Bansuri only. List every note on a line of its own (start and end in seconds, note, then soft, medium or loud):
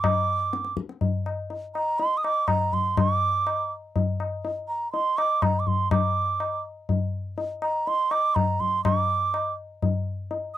0.00 0.75 D6 medium
1.74 2.00 A#5 medium
1.99 2.19 C6 medium
2.17 2.25 D#6 medium
2.24 2.49 D6 medium
2.48 2.75 A#5 medium
2.73 3.00 C6 medium
2.99 3.71 D6 medium
4.68 4.91 A#5 medium
4.92 5.19 C6 medium
5.17 5.44 D6 medium
5.43 5.61 A#5 medium
5.59 5.69 D6 medium
5.67 5.91 C6 medium
5.92 6.61 D6 medium
7.63 7.89 A#5 medium
7.87 8.13 C6 loud
8.11 8.36 D6 medium
8.35 8.61 A#5 medium
8.60 8.84 C6 medium
8.84 9.53 D6 medium
10.54 10.58 D#6 medium